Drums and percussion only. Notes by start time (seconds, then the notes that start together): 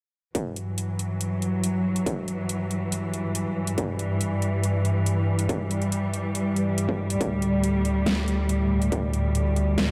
0.35 kick, closed hi-hat
0.56 closed hi-hat
0.78 closed hi-hat
0.99 closed hi-hat
1.21 closed hi-hat
1.42 closed hi-hat
1.64 closed hi-hat
1.96 closed hi-hat
2.06 kick, closed hi-hat
2.28 closed hi-hat
2.49 closed hi-hat
2.71 closed hi-hat
2.92 closed hi-hat
3.14 closed hi-hat
3.35 closed hi-hat
3.67 closed hi-hat
3.78 kick, closed hi-hat
3.99 closed hi-hat
4.21 closed hi-hat
4.42 closed hi-hat
4.64 closed hi-hat
4.85 closed hi-hat
5.06 closed hi-hat
5.39 closed hi-hat
5.49 kick, closed hi-hat
5.71 closed hi-hat
5.82 closed hi-hat
5.92 closed hi-hat
6.14 closed hi-hat
6.35 closed hi-hat
6.56 closed hi-hat
6.78 closed hi-hat
6.89 kick
7.10 closed hi-hat
7.21 kick, closed hi-hat
7.42 closed hi-hat
7.64 closed hi-hat
7.85 closed hi-hat
8.06 snare, closed hi-hat
8.28 closed hi-hat
8.49 closed hi-hat
8.82 closed hi-hat
8.92 kick, closed hi-hat
9.14 closed hi-hat
9.35 closed hi-hat
9.56 closed hi-hat
9.78 snare, closed hi-hat